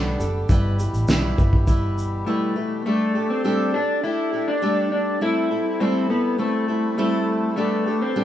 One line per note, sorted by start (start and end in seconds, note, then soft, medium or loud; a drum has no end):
0.00 0.14 B1 medium
0.00 0.47 D3 medium
0.00 0.20 G3 medium
0.00 2.82 G3 medium
0.00 0.46 A3 medium
0.00 0.20 B3 loud
0.00 0.47 B3 medium
0.00 0.20 D4 medium
0.00 0.19 G4 medium
0.00 2.82 G4 medium
0.00 0.18 A4 loud
0.19 0.44 F#1 medium
0.19 0.50 D4 soft
0.19 0.50 G4 medium
0.19 0.49 A4 medium
0.19 shaker medium
0.49 0.86 G1 loud
0.49 2.83 B2 medium
0.49 2.83 E3 medium
0.49 0.79 G3 medium
0.49 2.83 E4 medium
0.49 0.79 E4 medium
0.49 0.79 G4 medium
0.49 0.78 B4 medium
0.49 kick loud
0.49 shaker medium
0.79 1.08 E4 soft
0.79 1.09 G4 medium
0.79 1.09 B4 medium
0.79 shaker medium
0.93 1.06 A1 medium
0.93 shaker soft
1.08 1.32 B1 medium
1.08 1.38 G3 medium
1.08 1.39 E4 loud
1.08 1.38 G4 medium
1.08 1.37 B4 loud
1.08 snare loud
1.08 shaker medium
1.38 2.23 G1 loud
1.38 1.66 E4 medium
1.38 1.67 G4 medium
1.38 1.68 B4 medium
1.38 kick medium
1.38 shaker soft
1.53 kick medium
1.67 2.26 G3 medium
1.67 2.26 E4 medium
1.67 2.27 G4 medium
1.67 2.27 B4 medium
1.67 kick medium
1.67 shaker medium
1.98 shaker soft
2.26 2.56 G3 medium
2.26 2.85 A3 medium
2.26 2.56 E4 loud
2.26 2.56 G4 medium
2.26 2.55 B4 loud
2.56 2.86 E4 soft
2.56 2.86 G4 medium
2.56 2.85 B4 medium
2.86 3.15 G3 medium
2.86 3.27 A3 loud
2.86 3.15 A3 medium
2.86 3.16 D4 medium
2.86 5.19 G4 medium
2.86 3.15 G4 medium
2.86 7.53 A4 medium
2.86 3.14 A4 loud
2.86 5.19 D5 medium
2.86 8.24 A5 medium
3.15 3.44 D4 soft
3.15 3.44 G4 medium
3.15 3.44 A4 medium
3.30 3.75 C4 medium
3.44 3.74 G3 medium
3.44 3.74 A3 medium
3.44 3.74 D4 loud
3.44 3.74 G4 loud
3.44 3.73 A4 medium
3.74 4.03 D4 loud
3.74 4.03 D4 medium
3.74 4.04 G4 medium
3.74 4.03 A4 medium
4.04 4.33 A3 medium
4.04 4.33 D4 medium
4.04 4.49 E4 loud
4.04 4.32 G4 medium
4.04 4.32 A4 medium
4.33 4.62 D4 soft
4.33 4.62 G4 medium
4.33 4.62 A4 medium
4.48 4.91 D4 loud
4.62 5.20 G3 medium
4.62 5.21 A3 medium
4.62 5.21 D4 medium
4.62 5.22 G4 medium
4.62 5.22 A4 medium
4.92 5.22 D4 loud
5.21 5.51 G3 medium
5.21 7.55 G3 medium
5.21 5.51 A3 medium
5.21 5.51 C4 medium
5.21 5.82 E4 loud
5.21 5.51 E4 medium
5.21 7.55 E4 medium
5.21 5.50 A4 medium
5.21 7.55 C5 medium
5.51 5.80 C4 soft
5.51 5.81 E4 medium
5.51 5.80 A4 medium
5.80 6.10 G3 medium
5.80 6.10 A3 medium
5.80 6.10 C4 loud
5.80 6.10 C4 medium
5.80 6.09 E4 loud
5.80 6.08 A4 medium
6.10 6.39 B3 loud
6.10 6.38 C4 soft
6.10 6.39 E4 medium
6.10 6.39 A4 medium
6.38 6.68 A3 medium
6.38 6.96 A3 medium
6.38 6.68 C4 medium
6.38 6.68 E4 medium
6.38 6.67 A4 medium
6.68 6.97 C4 soft
6.68 6.98 E4 medium
6.68 6.98 A4 medium
6.98 7.56 G3 medium
6.98 7.55 A3 medium
6.98 7.57 A3 loud
6.98 7.57 C4 medium
6.98 7.57 E4 loud
6.98 7.58 A4 loud
7.56 7.86 G3 medium
7.56 8.02 A3 loud
7.56 7.86 B3 medium
7.56 7.86 D4 medium
7.56 8.24 G4 medium
7.56 7.87 G4 medium
7.56 7.85 A4 medium
7.56 8.24 B4 medium
7.56 8.24 D5 medium
7.86 8.16 D4 medium
7.86 8.16 G4 medium
7.86 8.15 A4 medium
8.02 8.24 C4 loud
8.16 8.24 G3 medium
8.16 8.24 B3 loud
8.16 8.24 D4 medium
8.16 8.24 G4 medium
8.16 8.24 A4 loud